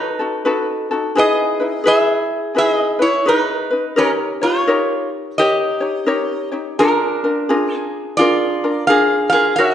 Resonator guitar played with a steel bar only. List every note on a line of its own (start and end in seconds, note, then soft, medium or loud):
0.00 0.88 D#4 medium
0.00 0.87 B4 medium
1.18 1.83 G#4 medium
1.18 1.87 D#5 medium
1.87 2.53 G#4 medium
1.87 2.58 E5 medium
2.58 2.99 G#4 medium
2.58 2.70 E5 medium
2.70 3.02 D#5 medium
3.02 3.25 E4 medium
3.02 3.28 C#5 medium
3.28 3.94 D#4 medium
3.28 3.98 B4 medium
3.98 4.11 C#4 medium
3.98 4.10 A#4 medium
4.43 5.09 F4 medium
4.43 5.08 C#5 medium
5.38 6.49 G4 medium
5.38 6.48 D#5 medium
6.79 8.16 D4 medium
6.79 7.76 A#4 medium
7.76 8.23 G#4 medium
8.17 8.85 F4 medium
8.17 8.87 D5 medium
8.87 9.31 G#4 medium
8.87 9.28 F5 medium
9.30 9.57 G#4 medium
9.30 9.55 F5 medium
9.56 9.74 F#4 medium
9.56 9.74 E5 medium